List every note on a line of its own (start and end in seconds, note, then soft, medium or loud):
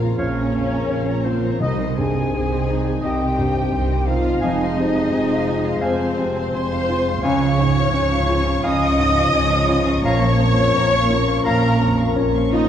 0.00 0.10 A#1 medium
0.00 0.15 A#1 soft
0.00 0.54 F2 soft
0.00 0.10 A#2 medium
0.00 1.63 A#2 medium
0.00 1.57 C#3 medium
0.00 1.40 F3 soft
0.00 1.57 F3 medium
0.00 1.22 A#3 soft
0.00 0.89 C#4 soft
0.00 1.04 C#4 soft
0.00 0.19 F4 medium
0.00 0.40 F4 soft
0.00 0.87 F4 soft
0.00 0.71 A#4 soft
0.00 0.19 C#5 soft
0.00 0.18 F5 medium
0.00 0.34 F5 soft
0.00 0.19 A#5 soft
0.17 0.81 A#1 medium
0.17 1.57 A#1 soft
0.17 0.81 A#2 medium
0.17 1.24 C#4 medium
0.17 0.36 A#4 soft
0.17 1.26 C#5 medium
0.17 0.43 C#5 medium
0.17 1.22 C#5 medium
0.17 0.43 F5 medium
0.17 0.36 F5 soft
0.35 0.55 C#5 soft
0.35 1.63 F5 soft
0.35 0.55 A#5 soft
0.54 1.10 F2 soft
0.54 0.72 A#4 soft
0.54 0.72 F5 soft
0.72 1.64 A#4 medium
0.72 0.90 C#5 soft
0.72 0.90 A#5 soft
0.88 1.52 A#1 medium
0.88 1.52 A#2 medium
0.88 1.46 C#4 medium
0.88 1.63 F4 medium
0.88 1.06 A#4 soft
0.88 1.06 F5 medium
1.05 1.63 C#4 soft
1.05 1.25 C#5 soft
1.05 1.25 A#5 soft
1.23 1.63 A#3 soft
1.23 1.60 C4 medium
1.23 1.61 F4 soft
1.23 1.43 A#4 medium
1.23 1.60 C5 medium
1.23 1.62 C5 medium
1.23 1.43 F5 medium
1.42 1.63 F3 soft
1.42 1.61 C#5 soft
1.42 1.61 A#5 soft
1.59 2.24 C2 medium
1.59 2.99 C2 medium
1.59 4.45 C3 medium
1.59 2.64 C3 medium
1.59 2.25 C3 medium
1.59 4.25 D#3 medium
1.59 7.20 C4 medium
1.59 1.96 D#4 medium
1.59 1.78 C5 medium
1.59 1.97 D#5 medium
1.59 1.87 D#5 medium
1.59 1.97 D#5 medium
1.59 1.78 D#5 medium
1.59 1.87 D#5 medium
1.78 4.25 G3 medium
1.78 1.98 C5 medium
1.78 1.98 D#5 soft
1.96 2.55 G2 soft
1.96 4.06 C4 medium
1.96 3.00 G#4 medium
1.96 2.16 C5 soft
1.96 2.16 D#5 soft
1.96 3.03 G#5 medium
1.96 2.75 G#5 medium
2.14 3.90 D#4 medium
2.14 2.33 C5 medium
2.14 2.32 D#5 soft
2.33 2.94 C2 medium
2.33 2.95 C3 medium
2.33 2.90 C4 medium
2.33 2.50 C5 soft
2.33 2.50 D#5 soft
2.50 3.54 C5 medium
2.50 2.68 C5 soft
2.50 2.68 D#5 medium
2.68 3.25 D#4 soft
2.68 2.86 C5 soft
2.68 3.01 D#5 soft
2.68 2.85 D#5 soft
2.85 3.01 C5 soft
2.85 3.01 D#5 soft
2.85 3.19 G5 soft
3.02 3.64 C2 medium
3.02 4.39 C2 soft
3.02 3.64 C3 medium
3.02 4.07 G4 medium
3.02 3.19 C5 soft
3.02 3.27 D#5 medium
3.02 3.36 D#5 medium
3.02 3.19 D#5 medium
3.02 3.28 D#5 medium
3.02 4.08 G5 medium
3.20 3.37 C5 soft
3.20 3.37 D#5 soft
3.20 4.45 G5 medium
3.37 3.94 G2 soft
3.37 3.55 C5 medium
3.37 4.45 D#5 medium
3.37 3.55 D#5 medium
3.55 5.30 C5 medium
3.55 3.72 C5 soft
3.55 3.72 D#5 medium
3.72 4.34 C2 medium
3.72 4.34 C3 medium
3.72 4.29 C4 medium
3.72 4.46 G4 medium
3.72 3.89 C5 medium
3.72 3.89 D#5 medium
3.91 4.46 D#4 medium
3.91 4.08 C5 medium
3.91 4.08 D#5 medium
4.06 4.77 C4 medium
4.06 4.43 D#4 soft
4.06 4.42 F4 loud
4.06 4.24 C5 medium
4.06 4.24 D#5 medium
4.06 4.45 F5 medium
4.06 4.42 F5 medium
4.25 4.46 G3 soft
4.25 4.43 C5 medium
4.25 4.43 D#5 soft
4.40 5.04 F1 medium
4.40 5.78 F2 medium
4.40 5.04 F2 medium
4.40 8.34 F3 medium
4.40 7.20 G#3 medium
4.40 5.79 D#4 loud
4.40 4.60 C5 medium
4.40 5.83 D#5 medium
4.40 4.67 F5 medium
4.40 4.66 G#5 medium
4.40 4.60 G#5 medium
4.45 5.83 D#5 medium
4.61 7.06 G#3 medium
4.61 4.78 F5 medium
4.61 4.78 C6 medium
4.78 5.33 C3 medium
4.78 6.89 C4 medium
4.78 4.96 C5 medium
4.78 4.96 G#5 medium
4.96 6.71 F4 medium
4.96 5.13 F5 medium
4.96 5.13 C6 medium
5.13 5.74 F1 medium
5.13 5.74 F2 medium
5.13 5.68 C4 soft
5.13 6.53 G#4 medium
5.13 5.29 C5 medium
5.13 5.29 G#5 medium
5.30 6.35 C5 medium
5.30 5.47 F5 medium
5.30 5.47 C6 medium
5.47 6.03 F4 soft
5.47 5.65 C5 medium
5.47 5.81 F5 medium
5.47 5.65 G#5 medium
5.64 5.82 F5 soft
5.64 5.99 G#5 medium
5.64 5.82 C6 soft
5.81 6.45 F1 medium
5.81 6.45 F2 medium
5.81 7.21 F2 medium
5.81 6.54 C4 medium
5.81 6.52 C5 medium
5.81 6.54 C5 medium
5.81 5.99 C5 medium
5.81 6.07 F5 medium
5.81 6.16 F5 medium
5.81 6.07 G#5 medium
5.81 5.99 G#5 medium
6.00 6.18 F5 medium
6.00 8.45 G#5 medium
6.00 6.18 C6 medium
6.17 6.75 C3 soft
6.17 6.36 C5 medium
6.17 8.27 F5 medium
6.17 6.36 G#5 medium
6.36 7.27 C5 medium
6.36 6.54 F5 medium
6.36 6.54 C6 medium
6.52 7.16 F1 medium
6.52 7.16 F2 medium
6.52 7.11 C4 medium
6.52 7.93 G#4 medium
6.52 7.24 C5 loud
6.52 6.71 C5 medium
6.52 6.71 G#5 medium
6.52 7.25 C6 medium
6.52 7.24 C6 medium
6.72 7.75 F4 medium
6.72 6.89 F5 medium
6.72 6.89 C6 medium
6.89 7.27 C4 medium
6.89 7.24 F4 medium
6.89 7.07 C5 medium
6.89 7.07 G#5 medium
7.07 7.41 G#3 soft
7.07 7.24 F5 medium
7.07 7.24 C6 medium
7.22 7.85 C#2 medium
7.22 8.60 C#2 medium
7.22 7.86 C#3 medium
7.22 10.07 C#3 medium
7.22 12.69 F3 medium
7.22 12.69 C#4 medium
7.22 8.61 C#5 loud
7.22 7.40 C#5 medium
7.22 7.48 F5 medium
7.22 7.48 G#5 medium
7.22 7.40 G#5 medium
7.22 8.63 C#6 medium
7.22 8.61 C#6 loud
7.41 9.85 G#3 medium
7.41 7.59 F5 medium
7.41 7.59 C#6 medium
7.58 8.15 G#2 medium
7.58 9.67 C#4 medium
7.58 7.76 C#5 medium
7.58 7.76 G#5 medium
7.76 9.49 F4 medium
7.76 7.94 F5 medium
7.76 7.94 C#6 medium
7.93 8.56 C#2 medium
7.93 8.55 C#3 medium
7.93 8.50 C#4 medium
7.93 9.32 G#4 medium
7.93 8.10 C#5 medium
7.93 8.10 G#5 medium
8.10 9.15 C#5 medium
8.10 8.29 F5 medium
8.10 8.29 C#6 medium
8.28 8.85 F4 medium
8.28 8.46 C#5 medium
8.28 8.63 F5 medium
8.28 8.46 G#5 medium
8.46 8.64 F5 medium
8.46 8.80 G#5 medium
8.46 8.65 C#6 medium
8.63 10.00 C#2 medium
8.63 9.26 C#2 medium
8.63 9.25 C#3 medium
8.63 8.80 C#5 medium
8.63 10.04 D#5 loud
8.63 8.88 F5 medium
8.63 8.98 F5 medium
8.63 8.80 G#5 medium
8.63 8.88 G#5 medium
8.63 10.05 D#6 loud
8.63 9.75 D#6 loud
8.81 8.99 F5 medium
8.81 10.07 G#5 medium
8.81 8.99 C#6 medium
8.98 9.55 G#2 medium
8.98 9.16 C#5 medium
8.98 11.26 F5 medium
8.98 9.16 G#5 medium
9.14 11.08 C#5 medium
9.14 9.33 F5 medium
9.14 9.33 C#6 medium
9.32 9.96 C#2 medium
9.32 9.96 C#3 medium
9.32 9.90 C#4 medium
9.32 10.07 G#4 medium
9.32 9.49 C#5 medium
9.32 9.49 G#5 medium
9.50 10.74 F4 medium
9.50 9.68 F5 medium
9.50 9.68 C#6 medium
9.66 10.56 C#4 medium
9.66 10.04 F4 medium
9.66 9.85 C#5 medium
9.66 9.86 G#5 medium
9.84 10.07 G#3 medium
9.84 10.03 F5 medium
9.84 10.03 C#6 medium
10.02 11.41 A#1 medium
10.02 10.67 A#1 medium
10.02 10.66 A#2 medium
10.02 12.69 A#2 medium
10.02 10.20 C#5 medium
10.02 11.44 C#5 loud
10.02 10.30 F5 medium
10.02 10.20 A#5 medium
10.02 10.29 A#5 medium
10.02 11.42 C#6 loud
10.02 11.47 C#6 loud
10.19 12.69 F3 medium
10.19 10.39 F5 medium
10.19 10.38 C#6 medium
10.39 10.96 F2 medium
10.39 12.51 A#3 medium
10.39 10.57 C#5 medium
10.39 10.57 A#5 medium
10.57 12.33 C#4 medium
10.57 10.75 F5 medium
10.57 10.75 C#6 medium
10.74 11.37 A#1 medium
10.74 11.37 A#2 medium
10.74 11.32 C#4 medium
10.74 10.91 C#5 medium
10.74 10.91 A#5 medium
10.92 11.97 A#4 medium
10.92 11.10 F5 medium
10.92 11.10 C#6 medium
11.09 11.66 F4 medium
11.09 11.27 C#5 medium
11.09 11.44 C#5 medium
11.09 11.27 A#5 medium
11.27 11.45 F5 medium
11.27 11.62 F5 medium
11.27 11.45 C#6 medium
11.44 12.07 A#1 medium
11.44 12.69 A#1 medium
11.44 12.07 A#2 medium
11.44 12.14 A#4 loud
11.44 11.61 C#5 medium
11.44 11.79 C#5 medium
11.44 11.70 F5 medium
11.44 11.70 A#5 medium
11.44 12.16 A#5 medium
11.44 11.62 A#5 medium
11.44 12.16 A#5 loud
11.62 11.80 F5 medium
11.62 12.69 F5 medium
11.62 11.80 C#6 medium
11.80 12.37 F2 medium
11.80 11.98 C#5 medium
11.80 12.69 C#5 medium
11.80 11.98 A#5 medium
11.98 12.69 A#4 medium
11.98 12.16 F5 medium
11.98 12.16 C#6 medium
12.15 12.69 A#1 medium
12.15 12.69 A#2 medium
12.15 12.69 C#4 medium
12.15 12.69 F4 medium
12.15 12.33 C#5 medium
12.15 12.33 A#5 medium
12.33 12.69 C#4 medium
12.33 12.52 F5 medium
12.33 12.52 C#6 medium
12.51 12.69 A#3 medium
12.51 12.69 D#4 loud
12.51 12.69 F4 medium
12.51 12.69 C#5 medium
12.51 12.69 D#5 medium
12.51 12.69 A#5 medium